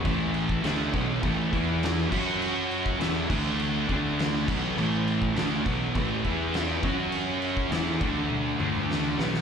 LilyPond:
<<
  \new Staff \with { instrumentName = "Tonewheel organ" } { \time 4/4 \key a \major \tempo 4 = 102 << { <a' a''>2~ <a' a''>8 <b' b''>4 <cis'' cis'''>8~ | <cis'' cis'''>4 <a' a''>8 <d'' d'''>2 <a' a''>8~ | <a' a''>2~ <a' a''>8 <b' b''>4 <cis'' cis'''>8~ | <cis'' cis'''>4 <a' a''>8 <d'' d'''>2 <a' a''>8 | } \\ { e'2.~ e'8 fis'8~ | fis'4 e'8 r2 e'8~ | e'2.~ e'8 fis'8~ | fis'4 e'8 a'2 e'8 | } >> }
  \new Staff \with { instrumentName = "Distorted electric guitar" } { \time 4/4 \key a \major <a, e a>4 <d a d'>8 <b, fis b>8 <a, e a>8 <e b e'>4 <fis cis' fis'>8~ | <fis cis' fis'>4 <e b e'>8 <d a d'>4 <d a d'>4 <b, fis b>8 | <a, e a>4 <d a d'>8 <b, fis b>8 <a, e a>8 <e b e'>4 <fis cis' fis'>8~ | <fis cis' fis'>4 <e b e'>8 <d a d'>4 <d a d'>4 <b, fis b>8 | }
  \new Staff \with { instrumentName = "Distorted electric guitar" } { \time 4/4 \key a \major <a, e a>4 <d a d'>8 <b, fis b>8 <a, e a>8 <e b e'>4 <fis cis' fis'>8~ | <fis cis' fis'>4 <e b e'>8 <d a d'>4 <d a d'>4 <b, fis b>8 | <a, e a>4 <d a d'>8 <b, fis b>8 <a, e a>8 <e b e'>4 <fis cis' fis'>8~ | <fis cis' fis'>4 <e b e'>8 <d a d'>4 <d a d'>4 <b, fis b>8 | }
  \new Staff \with { instrumentName = "Distorted electric guitar" } { \time 4/4 \key a \major <a, e a>4 <d a d'>8 <b, fis b>8 <a, e a>8 <e b e'>4 <fis cis' fis'>8~ | <fis cis' fis'>4 <e b e'>8 <d a d'>4 <d a d'>4 <b, fis b>8 | <a, e a>4 <d a d'>8 <b, fis b>8 <a, e a>8 <e b e'>4 <fis cis' fis'>8~ | <fis cis' fis'>4 <e b e'>8 <d a d'>4 <d a d'>4 <b, fis b>8 | }
  \new Staff \with { instrumentName = "Fingered electric bass" } { \clef bass \time 4/4 \key a \major a,,4 d,8 b,,8 a,,8 e,4 fis,8~ | fis,4 e,8 d,4 d,4 b,,8 | a,,4 d,8 b,,8 a,,8 e,4 fis,8~ | fis,4 e,8 d,4 d,4 b,,8 | }
  \new DrumStaff \with { instrumentName = "Drums" } \drummode { \time 4/4 <cymc bd>8 cymc16 bd16 <cymc sn>8 <cymc bd>8 <cymc bd>8 <cymc bd>8 <cymc sn>8 <cymc bd>8 | cymc8 cymc16 bd16 <cymc sn>8 <cymc bd>8 cymc8 <cymc bd>8 <cymc sn>8 <cymc bd>8 | cymc8 cymc16 bd16 <cymc sn>8 <cymc bd>8 <cymc bd>8 <cymc bd>8 <cymc sn>8 <cymc bd>8 | cymc8 cymc16 bd16 <cymc sn>8 <cymc bd>8 tommh8 toml16 toml16 sn8 sn16 sn16 | }
>>